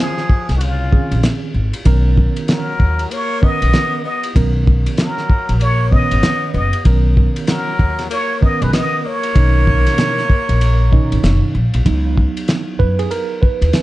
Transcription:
0.00 0.21 D#3 medium
0.00 0.51 F3 medium
0.00 0.21 C4 medium
0.00 0.21 C#4 medium
0.00 0.21 F4 medium
0.00 0.52 G#4 medium
0.18 snare soft
0.29 kick medium
0.49 0.98 C2 medium
0.49 snare soft
0.49 ride medium
0.55 0.62 D#3 medium
0.55 0.64 F#4 medium
0.60 1.23 C#3 medium
0.60 1.24 F4 medium
0.60 ride medium
0.91 1.54 D#3 medium
0.91 1.54 C4 medium
0.91 1.54 C#4 medium
0.91 1.54 G#4 medium
0.91 kick medium
1.11 1.21 A#1 medium
1.11 ride medium
1.23 snare loud
1.23 hi-hat pedal soft
1.23 ride medium
1.54 1.70 G#1 medium
1.73 ride medium
1.85 2.26 B1 loud
1.85 2.71 D#3 medium
1.85 2.71 B3 medium
1.85 2.71 C#4 medium
1.85 2.71 A#4 loud
1.85 kick loud
1.85 ride medium
2.17 kick loud
2.36 ride medium
2.48 3.12 F#3 medium
2.48 3.14 A#4 medium
2.48 snare loud
2.48 hi-hat pedal soft
2.48 ride medium
2.80 3.04 D#2 medium
2.80 kick medium
2.99 ride medium
3.11 3.44 A#3 medium
3.11 3.46 C#5 loud
3.11 ride medium
3.41 4.04 D#3 medium
3.41 4.04 B3 medium
3.41 4.04 B3 loud
3.41 4.04 C#4 medium
3.41 4.04 A#4 medium
3.41 4.05 D#5 loud
3.41 kick medium
3.62 3.71 B1 medium
3.62 ride medium
3.73 snare loud
3.73 hi-hat pedal soft
3.73 ride medium
4.04 4.33 B3 medium
4.04 4.34 D#5 medium
4.23 ride medium
4.35 4.85 B1 loud
4.35 5.21 D#3 medium
4.35 5.21 B3 medium
4.35 5.21 C#4 medium
4.35 5.21 A#4 medium
4.35 kick loud
4.35 ride medium
4.67 kick medium
4.86 ride medium
4.98 5.57 F#3 medium
4.98 5.58 A#4 medium
4.98 snare loud
4.98 hi-hat pedal soft
4.98 ride medium
5.18 snare soft
5.30 kick medium
5.49 5.98 A#1 medium
5.49 ride medium
5.59 5.92 A#3 medium
5.59 5.94 C#5 loud
5.59 ride medium
5.90 6.00 C#3 medium
5.90 6.53 B3 loud
5.90 6.54 B3 medium
5.90 6.54 C#4 medium
5.90 6.54 C#5 medium
5.90 6.55 D#5 loud
5.90 kick medium
5.98 6.57 D#3 medium
6.11 6.21 G#1 medium
6.11 ride medium
6.23 snare loud
6.23 hi-hat pedal soft
6.23 ride medium
6.53 6.70 F#1 medium
6.53 6.83 B3 medium
6.53 6.84 D#5 medium
6.73 ride medium
6.85 7.26 B1 loud
6.85 7.71 D#3 medium
6.85 7.71 B3 medium
6.85 7.71 C#4 medium
6.85 7.71 A#4 medium
6.85 kick loud
6.85 ride medium
7.17 kick medium
7.36 ride medium
7.47 8.06 F#3 medium
7.47 8.07 A#4 medium
7.47 snare loud
7.47 hi-hat pedal soft
7.47 ride medium
7.79 8.04 D#2 medium
7.79 kick medium
7.99 snare soft
7.99 ride medium
8.10 8.43 A#3 medium
8.10 8.45 C#5 loud
8.10 ride medium
8.41 9.04 D#3 medium
8.41 9.04 B3 medium
8.41 8.63 B3 medium
8.41 9.04 C#4 medium
8.41 9.04 A#4 medium
8.41 8.64 D#5 loud
8.41 kick medium
8.61 8.71 B1 medium
8.61 8.72 G#3 medium
8.61 8.74 B4 medium
8.61 ride medium
8.73 9.06 B3 loud
8.73 9.08 D#5 loud
8.73 snare loud
8.73 hi-hat pedal soft
8.73 ride medium
9.04 11.54 A#3 medium
9.04 11.55 C#5 loud
9.23 ride medium
9.35 9.85 B1 loud
9.35 10.21 B2 medium
9.35 10.21 D#3 medium
9.35 10.21 C#4 medium
9.35 10.21 D#4 medium
9.35 kick loud
9.35 ride medium
9.67 kick medium
9.87 snare soft
9.87 ride medium
9.98 snare loud
9.98 hi-hat pedal soft
9.98 ride medium
10.18 snare soft
10.30 kick medium
10.49 10.98 A#1 medium
10.49 ride medium
10.61 ride medium
10.91 11.54 B2 medium
10.91 11.54 D#3 medium
10.91 11.54 C#4 medium
10.91 11.54 D#4 medium
10.91 kick medium
11.12 11.21 G#1 medium
11.12 ride medium
11.23 11.39 F#1 medium
11.23 snare loud
11.23 hi-hat pedal soft
11.23 ride medium
11.55 11.70 A#1 medium
11.74 11.84 B1 medium
11.74 ride medium
11.85 12.26 C#2 loud
11.85 13.82 F#3 medium
11.85 13.82 B3 soft
11.85 13.82 D#4 medium
11.85 kick loud
11.85 ride medium
12.18 kick medium
12.37 ride medium
12.48 snare loud
12.48 hi-hat pedal soft
12.48 ride medium
12.79 13.04 F#2 medium
12.79 12.99 B4 loud
12.79 kick medium
12.99 13.10 G#4 medium
12.99 ride medium
13.11 13.43 A#4 medium
13.11 ride medium
13.42 13.82 B4 medium
13.42 kick medium
13.61 13.71 D#2 medium
13.61 ride medium
13.73 snare medium
13.73 hi-hat pedal soft
13.73 ride medium

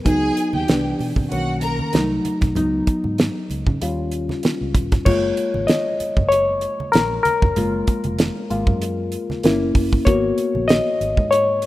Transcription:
0.05 0.30 C#2 loud
0.05 0.65 F#3 medium
0.05 0.65 B3 soft
0.05 0.65 D#4 medium
0.05 0.51 G#4 loud
0.05 0.51 G#5 loud
0.05 kick loud
0.05 closed hi-hat medium
0.05 muted conga soft
0.05 low conga medium
0.37 closed hi-hat medium
0.37 muted conga soft
0.53 0.65 D#2 medium
0.53 0.97 G4 medium
0.53 0.97 G5 medium
0.53 high conga medium
0.68 0.93 C2 medium
0.68 1.11 E3 medium
0.68 1.11 B3 medium
0.68 1.11 D4 medium
0.68 snare loud
0.68 closed hi-hat medium
0.99 1.13 B2 medium
0.99 open hi-hat soft
0.99 muted conga soft
1.16 1.28 C3 medium
1.16 kick medium
1.16 low conga medium
1.30 1.80 B1 loud
1.30 1.74 D#3 medium
1.30 1.74 A#3 soft
1.30 1.74 C#4 medium
1.30 1.56 F#4 medium
1.30 1.56 F#5 medium
1.30 closed hi-hat medium
1.61 1.87 A#4 medium
1.61 1.87 A#5 medium
1.61 closed hi-hat medium
1.61 muted conga soft
1.79 high conga medium
1.93 2.18 C2 loud
1.93 2.36 F#3 medium
1.93 2.36 A3 medium
1.93 2.37 D#4 medium
1.93 snare loud
1.93 closed hi-hat medium
2.25 closed hi-hat medium
2.25 high conga medium
2.41 2.53 B1 medium
2.41 kick medium
2.41 snare soft
2.41 closed hi-hat medium
2.41 low conga medium
2.55 2.80 C#2 loud
2.55 3.77 F#3 soft
2.55 3.77 B3 soft
2.55 3.78 D#4 medium
2.55 closed hi-hat medium
2.55 muted conga soft
2.55 low conga medium
2.87 kick medium
2.87 closed hi-hat medium
3.04 3.29 G#2 medium
3.04 high conga medium
3.18 snare loud
3.18 closed hi-hat medium
3.18 muted conga soft
3.50 3.63 C#2 medium
3.50 closed hi-hat medium
3.50 muted conga soft
3.67 3.78 C#3 loud
3.67 kick medium
3.67 low conga medium
3.81 4.30 D#2 medium
3.81 4.71 G3 soft
3.81 4.71 C#4 soft
3.81 4.72 F4 medium
3.81 closed hi-hat medium
3.81 muted conga soft
4.12 closed hi-hat medium
4.29 snare soft
4.29 high conga medium
4.43 snare medium
4.43 closed hi-hat medium
4.61 4.76 C#2 medium
4.75 4.99 D#1 medium
4.75 kick loud
4.75 closed hi-hat medium
4.75 muted conga soft
4.75 high conga medium
4.92 kick loud
4.92 snare soft
4.92 closed hi-hat soft
4.92 low conga medium
5.05 5.30 F#1 loud
5.05 5.96 G#3 soft
5.05 5.96 A#3 soft
5.05 5.97 F4 medium
5.05 5.70 C#5 medium
5.05 kick loud
5.05 crash loud
5.05 low conga medium
5.37 closed hi-hat medium
5.37 muted conga soft
5.54 5.66 G#1 medium
5.54 high conga medium
5.67 6.32 D#5 medium
5.67 snare loud
5.67 closed hi-hat medium
5.67 muted conga soft
6.00 muted fingered electric bass stroke soft
6.00 closed hi-hat medium
6.00 muted conga soft
6.17 6.65 F#1 medium
6.17 kick medium
6.17 low conga medium
6.29 6.89 C#5 loud
6.29 closed hi-hat medium
6.61 closed hi-hat medium
6.80 high conga medium
6.92 7.18 A#1 medium
6.92 7.07 A#4 loud
6.92 snare loud
6.92 closed hi-hat medium
6.92 muted conga soft
7.23 9.08 A#4 medium
7.23 closed hi-hat medium
7.23 muted conga soft
7.23 high conga medium
7.42 7.53 F1 medium
7.42 kick medium
7.42 low conga medium
7.56 7.81 F#1 loud
7.56 7.99 G#3 medium
7.56 7.99 A#3 soft
7.56 8.00 F4 medium
7.56 closed hi-hat medium
7.56 muted conga soft
7.56 low conga medium
7.87 kick medium
7.87 closed hi-hat medium
7.87 muted conga soft
8.04 8.29 F1 medium
8.04 closed hi-hat medium
8.04 high conga medium
8.19 snare loud
8.19 closed hi-hat medium
8.50 8.63 G#1 loud
8.50 8.78 G#3 medium
8.50 8.79 A#3 soft
8.50 8.79 F4 medium
8.50 closed hi-hat medium
8.50 muted conga soft
8.67 9.15 F#2 loud
8.67 kick medium
8.67 low conga medium
8.82 closed hi-hat medium
8.82 muted conga soft
9.12 closed hi-hat medium
9.30 snare soft
9.30 high conga medium
9.43 9.61 G1 loud
9.43 9.87 A#3 medium
9.43 9.87 C#4 medium
9.43 9.87 E4 medium
9.43 snare loud
9.43 closed hi-hat medium
9.43 muted conga soft
9.61 9.72 F#1 medium
9.75 9.99 F#1 loud
9.75 kick loud
9.75 open hi-hat medium
9.75 muted conga soft
9.75 high conga medium
9.93 kick medium
9.93 low conga medium
10.05 10.31 G#1 loud
10.05 10.96 A#3 medium
10.05 10.97 B3 soft
10.05 10.97 F#4 medium
10.05 10.70 C#5 medium
10.05 kick loud
10.05 closed hi-hat medium
10.05 low conga medium
10.38 closed hi-hat medium
10.38 muted conga soft
10.55 10.79 A#1 medium
10.55 high conga medium
10.68 11.33 D#5 loud
10.68 snare loud
10.68 closed hi-hat medium
10.68 muted conga soft
11.01 11.14 G#1 medium
11.01 closed hi-hat medium
11.17 11.65 G#2 medium
11.17 kick medium
11.17 low conga medium
11.31 11.66 C#5 loud
11.31 closed hi-hat loud
11.62 closed hi-hat medium

